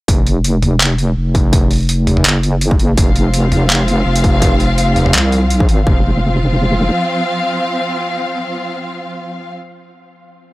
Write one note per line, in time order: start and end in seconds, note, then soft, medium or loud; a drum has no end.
0.08 1.15 F1 loud
0.08 kick loud
0.08 closed hi-hat medium
0.27 closed hi-hat soft
0.44 closed hi-hat medium
0.62 closed hi-hat soft
0.62 mid tom medium
0.80 clap loud
0.80 closed hi-hat medium
0.98 closed hi-hat soft
1.17 2.24 F1 loud
1.35 kick loud
1.35 closed hi-hat soft
1.53 kick loud
1.53 closed hi-hat medium
1.71 closed hi-hat soft
1.73 closed hi-hat soft
1.76 closed hi-hat soft
1.78 closed hi-hat soft
1.80 closed hi-hat soft
1.83 closed hi-hat soft
1.85 closed hi-hat soft
1.87 closed hi-hat soft
1.89 closed hi-hat medium
2.07 closed hi-hat soft
2.07 mid tom medium
2.17 mid tom medium
2.25 2.96 F#1 loud
2.25 clap loud
2.25 closed hi-hat medium
2.43 closed hi-hat soft
2.61 closed hi-hat medium
2.71 kick loud
2.79 closed hi-hat soft
2.97 4.05 F1 loud
2.97 5.84 F3 medium
2.97 5.84 C4 medium
2.97 5.84 F4 medium
2.97 5.84 F5 medium
2.97 kick loud
2.97 closed hi-hat medium
3.16 closed hi-hat soft
3.34 closed hi-hat medium
3.52 closed hi-hat soft
3.52 mid tom medium
3.70 clap loud
3.70 closed hi-hat medium
3.88 closed hi-hat soft
4.06 5.13 F1 loud
4.16 closed hi-hat medium
4.24 kick loud
4.24 closed hi-hat soft
4.42 kick loud
4.42 closed hi-hat medium
4.60 closed hi-hat soft
4.78 closed hi-hat medium
4.96 closed hi-hat soft
4.96 mid tom soft
5.06 mid tom medium
5.14 5.67 C2 loud
5.14 clap loud
5.14 closed hi-hat medium
5.32 closed hi-hat soft
5.50 closed hi-hat medium
5.60 kick loud
5.69 5.85 G#1 loud
5.69 closed hi-hat soft
5.86 6.91 F1 loud
5.86 9.52 F3 medium
5.86 9.52 C4 medium
5.86 9.52 F4 medium
5.86 9.52 F5 medium
5.86 kick loud